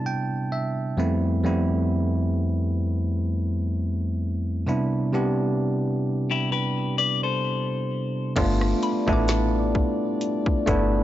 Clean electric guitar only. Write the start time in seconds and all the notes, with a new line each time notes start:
6.31 E4 G4
6.52 G4 B4
6.98 B4 D5
7.23 A4 C5